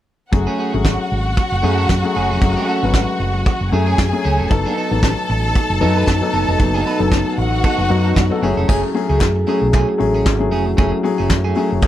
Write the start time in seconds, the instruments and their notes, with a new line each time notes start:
0.32 fingered electric bass F#1, grand piano F#3 A3 C#4 G#4, string section F#4 F#5, muted clean electric guitar stroke, kick, closed hi-hat
0.47 clean electric guitar A3 C#4 G#4
0.58 clean electric guitar A3 C#4 G#4
0.73 fingered electric bass G#1, grand piano F#3 A3 C#4 G#4, muted clean electric guitar stroke
0.85 muted clean electric guitar stroke, kick, snare, closed hi-hat
1.00 muted clean electric guitar stroke
1.12 fingered electric bass G#1
1.26 muted clean electric guitar stroke
1.37 muted clean electric guitar stroke, kick, closed hi-hat
1.52 fingered electric bass F#1, muted clean electric guitar stroke
1.62 fingered electric bass F#2, grand piano F#3 A3 C#4 G#4, clean electric guitar A3 C#4 G#4
1.78 clean electric guitar A3 C#4 A4
1.89 fingered electric bass F#2, muted clean electric guitar stroke, kick, snare, closed hi-hat
2.03 grand piano F#3 A3 C#4 G#4, muted clean electric guitar stroke
2.15 fingered electric bass F#1, clean electric guitar A3 C#4 G#4
2.30 fingered electric bass F1, clean electric guitar A3 C#4 G#4
2.41 fingered electric bass F#1, grand piano F#3 A3 C#4 G#4, muted clean electric guitar stroke, kick, closed hi-hat
2.57 clean electric guitar A3 C#4 G#4
2.67 clean electric guitar A3 C#4 A4
2.82 fingered electric bass G#1, grand piano F#3 G#3 C#4 B4, muted clean electric guitar stroke
2.90 grand piano A3
2.94 muted clean electric guitar stroke, kick, snare
3.09 muted clean electric guitar stroke
3.20 fingered electric bass F#1
3.34 muted clean electric guitar stroke
3.45 muted clean electric guitar stroke, kick, closed hi-hat
3.61 fingered electric bass F#1, muted clean electric guitar stroke
3.72 fingered electric bass F#2, grand piano F#3 A3 C#4 G#4, clean electric guitar A3 C#4 G#4, string section G#4 G#5
3.87 clean electric guitar A3 C#4 G#4
3.98 fingered electric bass F#2, muted clean electric guitar stroke, kick, snare, closed hi-hat
4.11 grand piano F#3 A3 C#4 G#4, muted clean electric guitar stroke
4.24 fingered electric bass C#2, clean electric guitar A3 C#4 G#4
4.39 fingered electric bass F1, clean electric guitar A3 C#4 A4
4.49 fingered electric bass F#1, french horn section B2 A3 D#4, grand piano F#3 B3 D#4 A4, string section A4 A5, muted clean electric guitar stroke, kick, closed hi-hat
4.66 clean electric guitar B3 D#4 A4
4.77 clean electric guitar B3 D#4 A4
4.90 fingered electric bass A1, grand piano F#3 B3 D#4 A4, muted clean electric guitar stroke
5.03 muted clean electric guitar stroke, kick, snare, closed hi-hat
5.18 muted clean electric guitar stroke
5.30 fingered electric bass A1
5.44 muted clean electric guitar stroke
5.55 muted clean electric guitar stroke, kick, closed hi-hat
5.70 fingered electric bass F#1, muted clean electric guitar stroke
5.80 fingered electric bass F#2, grand piano F#3 B3 D#4 A4, clean electric guitar B3 D#4 A4
5.97 clean electric guitar B3 D#4 B4
6.07 fingered electric bass F#2, muted clean electric guitar stroke, kick, snare, closed hi-hat
6.21 grand piano F#3 B3 D#4 A4, muted clean electric guitar stroke
6.33 fingered electric bass F#1, clean electric guitar B3 D#4 A4
6.47 fingered electric bass F1, clean electric guitar B3 D#4 A4
6.58 fingered electric bass F#1, grand piano F#3 B3 D#4 A4, muted clean electric guitar stroke, kick, closed hi-hat
6.74 clean electric guitar B3 D#4 A4
6.86 clean electric guitar B3 D#4 B4, open hi-hat
6.99 fingered electric bass F#1, grand piano F#3 B3 D#4 A4, muted clean electric guitar stroke
7.12 muted clean electric guitar stroke, kick, snare, closed hi-hat
7.26 muted clean electric guitar stroke
7.37 fingered electric bass A1, string section F#4 F#5, open hi-hat
7.52 muted clean electric guitar stroke
7.64 clean electric guitar B3 D#4 A4, kick, closed hi-hat
7.78 fingered electric bass F#1, muted clean electric guitar stroke
7.89 fingered electric bass F#2, grand piano F#3 B3 D#4 F#4, muted clean electric guitar stroke, open hi-hat
8.04 clean electric guitar B3 D#4 A4
8.16 fingered electric bass F#2, muted clean electric guitar stroke, kick, snare, closed hi-hat
8.30 grand piano F#3 B3 D#4 A4, muted clean electric guitar stroke
8.41 fingered electric bass F#1, french horn section A2 G#3 F#4, grand piano F#3 A3 C#4 G#4, clean electric guitar A3 C#4 G#4, open hi-hat
8.57 fingered electric bass F1, clean electric guitar A3 C#4 A4
8.67 fingered electric bass F#1, french horn section A2 F#4 G#4, grand piano F#3 A3 C#4 G#4, clean electric guitar A3 C#4 G#4, kick, crash
8.84 muted clean electric guitar stroke
8.94 grand piano F#3 A3 C#4 G#4, muted clean electric guitar stroke, open hi-hat
9.09 fingered electric bass C#2, clean electric guitar A3 C#4 G#4
9.21 fingered electric bass F#2, kick, snare, clap, closed hi-hat
9.36 muted clean electric guitar stroke
9.46 grand piano F#3 A3 C#4 G#4, clean electric guitar A3 C#4 G#4, open hi-hat
9.62 fingered electric bass B1, muted clean electric guitar stroke
9.73 clean electric guitar A3 C#4 G#4, kick, clap, closed hi-hat
9.89 muted clean electric guitar stroke
9.98 fingered electric bass A1, grand piano F#3 A3 C#4 G#4, muted clean electric guitar stroke, open hi-hat
10.15 clean electric guitar A3 C#4 G#4
10.26 fingered electric bass G#1, kick, snare, clap, closed hi-hat
10.39 grand piano F#3 A3 C#4 G#4, muted clean electric guitar stroke
10.51 fingered electric bass F1, clean electric guitar A3 C#4 G#4, open hi-hat
10.66 muted clean electric guitar stroke
10.77 fingered electric bass F#1, grand piano F#3 A3 C#4 G#4, clean electric guitar A3 C#4 G#4, french horn section A3, kick, closed hi-hat
10.93 muted clean electric guitar stroke
11.03 grand piano F#3 A3 C#4 G#4, muted clean electric guitar stroke, open hi-hat
11.18 fingered electric bass F#1, clean electric guitar A3 C#4 G#4
11.30 fingered electric bass F#2, kick, snare, clap, closed hi-hat
11.44 clean electric guitar A3 C#4 G#4
11.55 grand piano F#3 A3 C#4 G#4, clean electric guitar A3 C#4 G#4, open hi-hat
11.71 fingered electric bass F#1, muted clean electric guitar stroke
11.81 muted clean electric guitar stroke, kick, clap, closed hi-hat